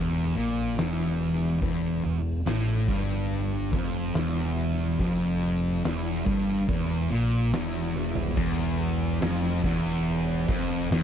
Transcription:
Already playing: fingered electric bass E1, distorted electric guitar E2
0.35 fingered electric bass A#1, distorted electric guitar A#2, open hi-hat
0.76 fingered electric bass E1, distorted electric guitar E2, snare, open hi-hat
1.21 open hi-hat
1.62 fingered electric bass E1, distorted electric guitar E2, kick, open hi-hat
2.04 fingered electric bass E1, distorted electric guitar E2, open hi-hat
2.46 fingered electric bass A1, distorted electric guitar A2, snare, open hi-hat
2.88 fingered electric bass G1, distorted electric guitar G2, kick, open hi-hat
3.31 open hi-hat
3.73 fingered electric bass F1, distorted electric guitar F2, kick, open hi-hat
4.14 fingered electric bass E1, distorted electric guitar E2, snare, open hi-hat
4.57 open hi-hat
4.99 fingered electric bass F1, distorted electric guitar F2, kick, open hi-hat
5.42 open hi-hat
5.84 fingered electric bass E1, distorted electric guitar E2, snare, open hi-hat
6.26 fingered electric bass G1, distorted electric guitar G2, kick, open hi-hat
6.69 fingered electric bass E1, distorted electric guitar E2, kick, open hi-hat
7.11 fingered electric bass A#1, distorted electric guitar A#2, open hi-hat
7.52 fingered electric bass E1, distorted electric guitar E2, snare, open hi-hat
7.96 snare
8.15 floor tom
8.37 fingered electric bass E1, distorted electric guitar E2, kick, crash
8.59 snare
9.21 fingered electric bass F1, distorted electric guitar F2, snare, crash
9.64 fingered electric bass E1, distorted electric guitar E2, kick
10.06 crash
10.48 fingered electric bass F1, distorted electric guitar F2, kick
10.91 fingered electric bass E1, distorted electric guitar E2, snare, crash

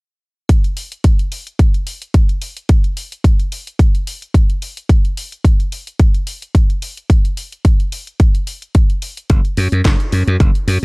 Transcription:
0.49 kick, closed hi-hat
0.64 closed hi-hat
0.77 open hi-hat
0.92 closed hi-hat
1.04 kick, closed hi-hat
1.19 closed hi-hat
1.32 open hi-hat
1.47 closed hi-hat
1.59 kick, closed hi-hat
1.74 closed hi-hat
1.87 open hi-hat
2.02 closed hi-hat
2.14 kick, closed hi-hat
2.29 closed hi-hat
2.42 open hi-hat
2.57 closed hi-hat
2.69 kick, closed hi-hat
2.84 closed hi-hat
2.97 open hi-hat
3.12 closed hi-hat
3.24 kick, closed hi-hat
3.40 closed hi-hat
3.52 open hi-hat
3.67 closed hi-hat
3.79 kick, closed hi-hat
3.95 closed hi-hat
4.07 open hi-hat
4.22 closed hi-hat
4.34 kick, closed hi-hat
4.50 closed hi-hat
4.62 open hi-hat
4.77 closed hi-hat
4.89 kick, closed hi-hat
5.05 closed hi-hat
5.17 open hi-hat
5.32 closed hi-hat
5.45 kick, closed hi-hat
5.60 closed hi-hat
5.72 open hi-hat
5.87 closed hi-hat
6.00 kick, closed hi-hat
6.15 closed hi-hat
6.27 open hi-hat
6.42 closed hi-hat
6.55 kick, closed hi-hat
6.70 closed hi-hat
6.82 open hi-hat
6.97 closed hi-hat
7.10 kick, closed hi-hat
7.25 closed hi-hat
7.37 open hi-hat
7.52 closed hi-hat
7.65 kick, closed hi-hat
7.80 closed hi-hat
7.92 open hi-hat
8.07 closed hi-hat
8.20 kick, closed hi-hat
8.35 closed hi-hat
8.47 open hi-hat
8.62 closed hi-hat
8.75 kick, closed hi-hat
8.90 closed hi-hat
9.02 open hi-hat
9.17 closed hi-hat
9.30 slap bass F#1, kick, closed hi-hat
9.45 closed hi-hat
9.57 slap bass F#2, open hi-hat
9.72 slap bass F#2, closed hi-hat
9.85 slap bass F#1, kick, snare, closed hi-hat
10.00 closed hi-hat
10.12 slap bass F#2, open hi-hat
10.27 slap bass F#2, closed hi-hat
10.40 slap bass F#1, kick, closed hi-hat
10.55 closed hi-hat
10.67 slap bass F#2, open hi-hat

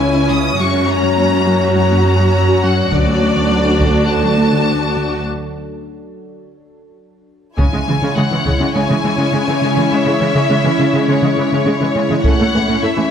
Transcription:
Already playing: cello section C#2, ambient pad G#3 C#4 E4 C#5, viola section C#4 E4, violin section G#5
0.16 synth pluck C#4
0.30 synth pluck C#3, violin section D#6
0.58 cello section F#2, ambient pad F#3 F#4, synth pluck F#3, viola section F#4, violin section C#6
0.74 synth pluck C#4
0.88 synth pluck C#4, violin section A#5
1.03 synth pluck F#3
1.17 synth pluck A#3
1.32 synth pluck F#4
1.47 synth pluck F#3
1.76 synth pluck F#3, violin section A#5
1.91 synth pluck A#3
2.05 synth pluck C#4
2.20 synth pluck F#3
2.49 synth pluck F#4
2.64 synth pluck F#3, violin section F#5
2.92 cello section D2, synth pluck D3, ambient pad D4 A4, viola section D4, violin section D5, taiko
3.07 synth pluck A3
3.21 synth pluck A3
3.36 synth pluck D3
3.51 synth pluck F#3
3.65 synth pluck D4
3.80 synth pluck D3, taiko
4.09 synth pluck D3, violin section A5
4.23 synth pluck F#3
4.38 synth pluck A3
4.53 synth pluck D3
4.82 synth pluck D4
4.97 synth pluck D3
7.58 synth pluck C#3, cello section C#3, viola section G#3 C#4, ambient pad G#3 C#4 E4 C#5, violin section E4 C#5 G#5, taiko
7.73 cello section C#3, viola section G#3, synth pluck C#4
7.88 cello section C#3, synth pluck E3, viola section E3 G#3
8.02 cello section C#3, synth pluck C#3, viola section G#3 C#4
8.16 cello section C#3, viola section G#3, synth pluck G#3, violin section F#5
8.31 cello section C#3, synth pluck E3, viola section E3 G#3
8.45 cello section C#3, synth pluck C#3, viola section G#3 C#4, taiko
8.60 cello section C#3, viola section G#3, synth pluck C#4
8.74 cello section C#3, synth pluck C#3, viola section G#3 C#4, violin section G#5
8.89 cello section C#3, synth pluck E3, viola section G#3
9.03 cello section C#3, viola section E3 G#3, synth pluck G#3
9.17 cello section C#3, synth pluck C#3, viola section G#3 C#4
9.33 cello section C#3, viola section G#3, synth pluck C#4
9.47 cello section C#3, viola section E3 G#3, synth pluck C#4
9.62 cello section C#3, synth pluck C#3, viola section G#3 C#4
9.76 cello section C#3, synth pluck E3, viola section G#3
9.91 cello section C#3, synth pluck C#3, viola section G#3 C#4, violin section E5
10.05 cello section C#3, viola section G#3, synth pluck C#4
10.20 cello section C#3, viola section E3 G#3, synth pluck E3
10.35 cello section C#3, synth pluck C#3, viola section G#3 C#4
10.49 cello section C#3, synth pluck G#3, viola section G#3
10.64 cello section C#3, synth pluck E3, viola section E3 G#3
10.79 cello section C#3, synth pluck C#3, viola section G#3 C#4
10.93 cello section C#3, viola section G#3, synth pluck C#4
11.08 synth pluck C#3, cello section C#3, viola section G#3 C#4, violin section C#5
11.22 cello section C#3, synth pluck E3, viola section G#3
11.37 cello section C#3, viola section E3 G#3, synth pluck G#3
11.52 cello section C#3, synth pluck C#3, viola section G#3 C#4
11.66 cello section C#3, viola section G#3, synth pluck C#4
11.81 cello section C#3, viola section E3 G#3, synth pluck C#4
11.95 cello section C#3, synth pluck C#3, viola section G#3 C#4
12.10 cello section C#3, synth pluck E3, viola section G#3
12.24 cello section A2, viola section A3 C#4, synth pluck A3, ambient pad A3 C#4 E4 C#5, violin section E4 C#5 F#5, taiko
12.39 cello section A2, viola section A3, synth pluck A4
12.54 cello section A2, viola section E3 A3, synth pluck C#4
12.68 cello section A2, synth pluck A3, viola section A3 C#4
12.83 cello section A2, viola section A3, synth pluck E4, violin section E5
12.97 cello section A2, viola section E3 A3, synth pluck C#4

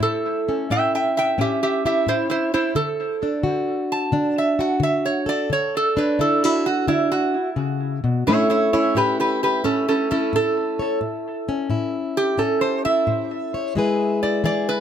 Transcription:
Already playing: steel-string acoustic guitar A3 E4
0.00 steel-string acoustic guitar A2, resonator guitar played with a steel bar A4
0.49 steel-string acoustic guitar C#4
0.70 steel-string acoustic guitar A2 E4, resonator guitar played with a steel bar E5 G5
0.95 resonator guitar played with a steel bar E5 G5
1.17 resonator guitar played with a steel bar E5 G5
1.38 steel-string acoustic guitar A2 C#4, resonator guitar played with a steel bar G4 E5
1.63 resonator guitar played with a steel bar G4 E5
1.85 steel-string acoustic guitar E4, resonator guitar played with a steel bar G4 E5
2.07 steel-string acoustic guitar A2, resonator guitar played with a steel bar E4 C5
2.30 resonator guitar played with a steel bar E4 C5
2.54 resonator guitar played with a steel bar E4 C5, steel-string acoustic guitar E4
2.75 steel-string acoustic guitar D3, resonator guitar played with a steel bar A4
3.23 steel-string acoustic guitar D4
3.43 steel-string acoustic guitar D3 F#4
3.92 resonator guitar played with a steel bar A5
4.12 steel-string acoustic guitar D3 D4
4.38 resonator guitar played with a steel bar E5
4.59 steel-string acoustic guitar F#4, resonator guitar played with a steel bar F#5
4.80 steel-string acoustic guitar D3, resonator guitar played with a steel bar E5
5.06 resonator guitar played with a steel bar C#5
5.26 steel-string acoustic guitar A4, resonator guitar played with a steel bar D5
5.50 steel-string acoustic guitar D3, resonator guitar played with a steel bar C#5
5.77 resonator guitar played with a steel bar A4
5.97 steel-string acoustic guitar D4, resonator guitar played with a steel bar B4
6.19 steel-string acoustic guitar D3 E4, resonator guitar played with a steel bar A4
6.44 resonator guitar played with a steel bar E4, steel-string acoustic guitar F#4
6.66 resonator guitar played with a steel bar F#4
6.88 steel-string acoustic guitar D3 D4, resonator guitar played with a steel bar E4
7.12 resonator guitar played with a steel bar F#4
7.56 steel-string acoustic guitar C#3
8.04 steel-string acoustic guitar B2
8.27 steel-string acoustic guitar A2 A3 C#4 E4, resonator guitar played with a steel bar E4 C#5
8.50 resonator guitar played with a steel bar E4 C#5
8.73 steel-string acoustic guitar C#4, resonator guitar played with a steel bar E4 C#5
8.95 steel-string acoustic guitar A2 E4, resonator guitar played with a steel bar G4 B4
9.20 resonator guitar played with a steel bar G4 B4
9.43 resonator guitar played with a steel bar G4 B4
9.64 steel-string acoustic guitar A2 C#4, resonator guitar played with a steel bar C#4 A4
9.88 resonator guitar played with a steel bar C#4 A4
10.11 resonator guitar played with a steel bar C#4 A4, steel-string acoustic guitar E4
10.33 steel-string acoustic guitar A2, resonator guitar played with a steel bar A4
10.79 steel-string acoustic guitar C#5
11.01 steel-string acoustic guitar A2
11.49 steel-string acoustic guitar C#4
11.70 steel-string acoustic guitar A2 E4
12.17 resonator guitar played with a steel bar G4
12.38 steel-string acoustic guitar A2 C#4, resonator guitar played with a steel bar A4
12.61 resonator guitar played with a steel bar C5
12.85 steel-string acoustic guitar E4, resonator guitar played with a steel bar E5
13.07 steel-string acoustic guitar A2
13.54 steel-string acoustic guitar C#5
13.75 steel-string acoustic guitar E3 G#3 E4 G#4 B4
14.23 steel-string acoustic guitar E4, resonator guitar played with a steel bar D5
14.44 steel-string acoustic guitar E3 G#4, resonator guitar played with a steel bar D5
14.69 resonator guitar played with a steel bar B4

